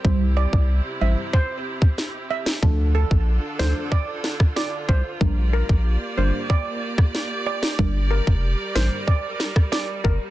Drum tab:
SD |------------o--o|------o---oro---|-----------ro--o|------o---oro---|
BD |o--o----o--o----|o--o----o--o--o-|o--o----o--o----|o--o----o--o--o-|